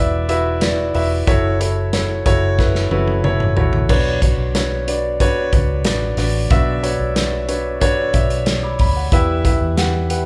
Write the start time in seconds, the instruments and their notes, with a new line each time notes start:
Already playing: fingered electric bass E1, grand piano E3 E4 F#4 B4 D5 E5
0.29 grand piano E4 F#4 B4 E5, closed hi-hat
0.61 grand piano E4 F#4 B4 D5, snare, closed hi-hat
0.94 fingered electric bass E1, grand piano E4 F#4 B4 E5, open hi-hat
1.27 fingered electric bass F#1, grand piano E4 F#4 A4 C#5, kick, closed hi-hat
1.60 grand piano E4 F#4 A4 C#5, closed hi-hat
1.93 grand piano E4 F#4 A4 C#5, snare, closed hi-hat
2.26 fingered electric bass F#1, grand piano E4 F#4 A4 C#5, kick, closed hi-hat
2.59 grand piano E4 F#4 A4 B4, kick, snare
2.75 snare
2.91 fingered electric bass F#1, grand piano E4 F#4 A4 B4, high tom
3.08 high tom
3.24 grand piano E4 F#4 A4 C#5, mid tom
3.40 mid tom
3.56 fingered electric bass A1, grand piano E4 F#4 A4 C#5, floor tom
3.73 floor tom
3.89 fingered electric bass B1, grand piano B2 D4 F#4 B4 C#5, kick, crash
4.22 grand piano D4 F#4 B4 C#5, kick, closed hi-hat
4.37 fingered electric bass B1
4.55 grand piano D4 F#4 B4 C#5, snare, closed hi-hat
4.87 grand piano D4 F#4 B4 D5, closed hi-hat
5.20 grand piano D4 F#4 B4 C#5, kick, closed hi-hat
5.53 fingered electric bass C#2, grand piano D4 F#4 B4 C#5, kick, closed hi-hat
5.84 fingered electric bass A1, grand piano D4 F#4 B4 D5, snare, closed hi-hat
6.17 fingered electric bass A1, grand piano D4 F#4 B4 D5, snare, open hi-hat
6.50 fingered electric bass B1, grand piano B2 D4 F#4 B4 E5, kick, closed hi-hat
6.82 grand piano D4 F#4 B4 C#5, closed hi-hat
6.99 fingered electric bass B1
7.15 grand piano D4 F#4 B4 D5, snare, closed hi-hat
7.48 grand piano D4 F#4 B4 C#5, closed hi-hat
7.80 grand piano D4 F#4 B4 C#5, kick, closed hi-hat
8.13 fingered electric bass B1, grand piano D4 F#4 B4 E5, kick, closed hi-hat
8.30 closed hi-hat
8.46 snare, closed hi-hat
8.63 grand piano B5 D6
8.79 fingered electric bass D2, grand piano B5, kick, open hi-hat
8.96 grand piano D5 F#5
9.12 fingered electric bass E2, grand piano E3 E4 G4 B4 E5, kick, closed hi-hat
9.45 grand piano E4 G4 B4 E5, kick, closed hi-hat
9.61 fingered electric bass E2
9.77 grand piano E4 G4 B4 F#5, snare, closed hi-hat
10.10 grand piano E4 G4 B4 F#5, closed hi-hat